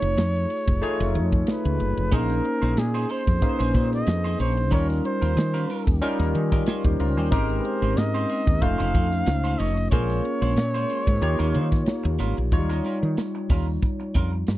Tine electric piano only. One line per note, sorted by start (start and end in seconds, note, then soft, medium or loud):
0.00 0.60 A3 medium
0.00 0.60 D#4 medium
0.00 0.60 F4 medium
0.00 0.60 G#4 medium
0.00 0.60 C#5 medium
0.82 1.89 A3 loud
0.82 1.90 D#4 medium
0.82 1.90 F4 medium
0.82 1.90 G#4 medium
0.82 1.90 C#5 loud
2.11 3.19 A#3 medium
2.11 3.19 C#4 medium
2.11 3.19 D#4 medium
2.11 3.20 G#4 medium
2.11 3.20 C5 medium
3.42 4.49 A#3 medium
3.42 4.49 C#4 medium
3.42 4.49 D#4 medium
3.42 4.50 G#4 medium
3.42 3.49 B4 medium
3.49 4.53 C5 medium
4.71 5.79 G3 medium
4.71 5.79 C#4 medium
4.71 5.79 D#4 medium
4.71 5.79 F4 medium
4.71 5.79 A#4 medium
6.01 7.09 G3 loud
6.01 6.34 C#4 medium
6.01 6.35 D#4 medium
6.01 6.34 F4 medium
6.01 6.35 A#4 loud
6.52 6.67 A#4 medium
6.52 6.66 D#5 medium
6.67 6.84 G4 medium
6.67 6.84 C#5 medium
6.85 6.99 G4 medium
6.85 6.99 C5 medium
7.00 7.17 F4 medium
7.00 7.16 A#4 medium
7.17 7.48 C#4 medium
7.17 7.31 G4 medium
7.31 8.39 G#3 medium
7.31 8.39 C4 medium
7.31 8.39 D#4 medium
7.31 8.39 G4 medium
7.31 8.39 A#4 loud
8.61 9.69 A3 medium
8.61 9.69 C#4 medium
8.61 9.69 D#4 medium
8.61 9.69 F4 medium
8.61 9.69 C5 loud
9.92 10.99 A#3 medium
9.92 10.99 C#4 medium
9.92 10.99 F4 medium
9.92 11.00 G#4 medium
9.92 11.00 A#4 medium
11.22 12.29 A#3 loud
11.22 12.29 D#4 medium
11.22 12.29 F4 medium
11.22 12.30 G4 medium
11.22 12.30 C#5 loud
12.52 12.59 F#3 medium
12.52 13.60 D#4 medium
12.52 13.60 F4 medium
12.52 13.60 C#5 medium
12.58 13.63 G3 medium